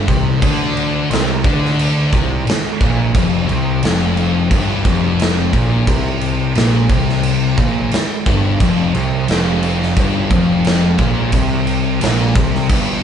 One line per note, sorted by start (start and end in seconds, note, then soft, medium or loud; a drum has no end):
0.08 0.40 C2 loud
0.08 0.42 C3 loud
0.08 kick loud
0.08 crash medium
0.42 1.06 D2 loud
0.42 1.09 D3 loud
0.42 kick loud
0.42 crash medium
0.77 crash medium
1.10 1.42 C2 medium
1.10 1.44 C3 medium
1.10 snare loud
1.10 crash medium
1.44 2.09 D2 loud
1.44 2.11 D3 loud
1.44 kick loud
1.44 crash medium
1.65 snare soft
1.79 crash medium
2.12 2.44 C2 loud
2.12 2.45 C3 loud
2.12 kick loud
2.12 crash soft
2.47 muted picked electric bass stroke soft
2.47 muted distorted electric guitar stroke medium
2.47 snare loud
2.47 crash medium
2.81 3.12 A#1 loud
2.81 3.14 A#2 loud
2.81 kick loud
2.81 crash medium
3.15 3.47 F1 loud
3.15 3.48 F2 loud
3.15 kick loud
3.15 crash medium
3.49 3.81 C2 loud
3.49 3.82 C3 loud
3.49 crash soft
3.83 4.47 F1 loud
3.83 4.51 F2 loud
3.83 snare loud
3.83 crash medium
4.17 crash medium
4.51 4.83 G1 medium
4.51 4.85 G2 loud
4.51 kick loud
4.51 crash medium
4.85 5.49 F1 loud
4.85 5.52 F2 loud
4.85 kick loud
4.85 crash medium
5.19 snare loud
5.19 crash medium
5.53 5.85 A#1 loud
5.53 5.87 A#2 loud
5.53 kick medium
5.53 crash medium
5.87 6.52 C2 loud
5.87 6.55 C3 loud
5.87 kick loud
5.87 crash medium
6.21 crash medium
6.55 6.88 A#1 loud
6.55 6.89 A#2 loud
6.55 snare loud
6.55 crash medium
6.90 7.54 C2 loud
6.90 7.57 C3 loud
6.90 kick loud
6.90 crash medium
7.09 snare soft
7.23 crash medium
7.57 7.89 A#1 loud
7.57 7.91 A#2 loud
7.57 kick loud
7.57 crash medium
7.91 muted distorted electric guitar stroke medium
7.91 muted picked electric bass stroke soft
7.91 snare loud
7.91 crash medium
8.26 8.58 G1 loud
8.26 8.60 G2 loud
8.26 kick loud
8.26 crash medium
8.60 8.92 F1 loud
8.60 8.94 F2 loud
8.60 kick loud
8.60 crash medium
8.94 9.26 C2 loud
8.94 9.28 C3 loud
8.94 crash medium
9.28 9.93 F1 loud
9.28 9.96 F2 loud
9.28 snare loud
9.28 crash medium
9.63 crash medium
9.82 snare soft
9.97 10.28 G1 medium
9.97 10.30 G2 loud
9.97 kick loud
9.97 crash medium
10.31 10.95 F1 loud
10.31 10.98 F2 loud
10.31 kick loud
10.31 crash medium
10.65 snare loud
10.65 crash medium
10.98 11.31 A#1 loud
10.98 11.32 A#2 loud
10.98 kick medium
10.98 crash medium
11.32 11.97 C2 loud
11.32 12.01 C3 loud
11.32 kick loud
11.32 crash medium
11.67 crash medium
12.01 12.33 A#1 loud
12.01 12.35 A#2 loud
12.01 snare loud
12.01 crash medium
12.35 12.67 C2 loud
12.35 12.69 C3 loud
12.35 kick loud
12.35 crash medium
12.55 snare soft
12.69 13.01 G1 medium
12.69 13.03 G2 loud
12.69 kick loud
12.69 crash medium